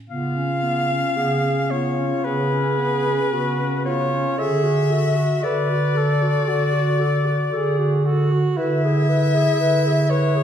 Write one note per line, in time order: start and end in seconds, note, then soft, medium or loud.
0.09 1.04 C#3 soft
0.09 0.38 B3 soft
0.09 1.18 F4 soft
0.09 1.72 F5 medium
0.36 0.64 C#4 soft
0.63 0.91 B3 soft
0.90 1.16 C#4 soft
1.16 2.13 C#3 soft
1.16 1.45 B3 soft
1.16 1.71 G#4 soft
1.44 1.72 C#4 soft
1.71 2.00 B3 soft
1.71 2.27 F4 soft
1.71 2.26 C#5 medium
1.98 2.24 C#4 soft
2.24 3.20 C#3 medium
2.24 2.53 B3 soft
2.24 3.34 G#4 medium
2.24 3.85 B4 medium
2.51 2.79 C#4 soft
2.78 3.06 B3 soft
3.05 3.31 C#4 soft
3.32 4.27 C#3 soft
3.32 3.60 B3 soft
3.32 3.88 F#4 soft
3.58 3.86 C#4 soft
3.85 4.13 B3 soft
3.85 4.38 F4 soft
3.85 4.40 C#5 medium
4.11 4.37 C#4 soft
4.37 5.31 D3 medium
4.37 4.93 G#4 medium
4.37 4.65 A4 soft
4.37 5.45 E5 medium
4.63 4.92 F#4 soft
4.90 5.46 F#4 soft
4.90 5.18 A4 soft
5.17 5.42 F#4 soft
5.43 6.35 D3 medium
5.43 5.71 A4 soft
5.43 5.99 B4 medium
5.43 8.29 D5 medium
5.69 5.97 F#4 soft
5.95 6.23 A4 soft
5.95 6.50 A4 soft
6.22 6.46 F#4 soft
6.47 7.39 D3 medium
6.47 7.24 F#4 medium
6.47 6.75 A4 soft
6.74 7.01 F#4 soft
6.99 7.27 A4 soft
7.26 7.51 F#4 soft
7.52 8.45 D3 medium
7.52 8.06 G#4 soft
7.52 7.80 A4 soft
7.78 8.06 F#4 soft
8.05 8.59 F#4 medium
8.05 8.33 A4 soft
8.31 8.57 F#4 soft
8.57 9.47 D3 medium
8.57 10.43 E4 medium
8.57 8.85 B4 soft
8.57 10.12 E5 medium
8.83 9.11 G#4 soft
9.09 9.36 B4 soft
9.35 9.59 G#4 soft
9.59 10.43 D3 medium
9.59 9.87 B4 medium
9.86 10.11 G#4 soft
10.10 10.36 B4 soft
10.10 10.43 C#5 medium
10.35 10.43 G#4 soft